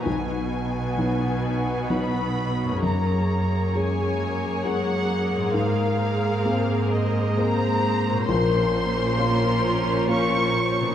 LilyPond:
<<
  \new Staff \with { instrumentName = "Violin section" } { \time 3/4 \key bes \minor \tempo 4 = 66 aes''2 b''4 | bes''4 aes''4 ges''4 | f''4. ees''8 bes''4 | c'''2 des'''4 | }
  \new Staff \with { instrumentName = "Violin section" } { \time 3/4 \key bes \minor << { b'2. | des''2. | c''2.~ | c''2. | } \\ { fis'2. | bes'2.~ | bes'2. | bes'2. | } >> }
  \new Staff \with { instrumentName = "Harp" } { \time 3/4 \key bes \minor <b, dis' fis' b'>2. | <ges, des' aes' bes'>2. | <aes, c' aes' bes'>2. | <bes, des' f' bes'>2. | }
  \new Staff \with { instrumentName = "Viola section" } { \time 3/4 \key bes \minor <b dis'>2. | <bes aes'>2.~ | <bes aes'>2. | <des' f'>2. | }
  \new Staff \with { instrumentName = "Grand piano" } { \time 3/4 \key bes \minor b,,4 <fis b dis'>4 <fis b dis'>4 | ges,4 <aes des' aes'>4 <aes des' aes'>4 | aes,4 <bes c' aes'>4 <bes c' aes'>4 | bes,,4 <bes des' f'>4 <bes des' f'>4 | }
  \new Staff \with { instrumentName = "Cello section" } { \clef bass \time 3/4 \key bes \minor b,2. | ges,2. | aes,2. | bes,2. | }
>>